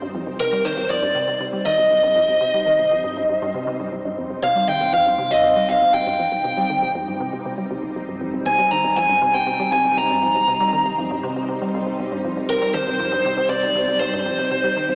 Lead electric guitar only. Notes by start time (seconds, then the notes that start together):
0.40 A#4
0.65 C5
0.90 D5
1.66 D#5
4.44 F5
4.69 G5
4.94 F5
5.31 D#5
5.69 F5
5.94 G5
8.46 G#5
8.71 A#5
8.96 G#5
9.34 G5
9.72 G#5
9.98 A#5
12.50 A#4
12.74 C5
13.49 D5
14.00 C5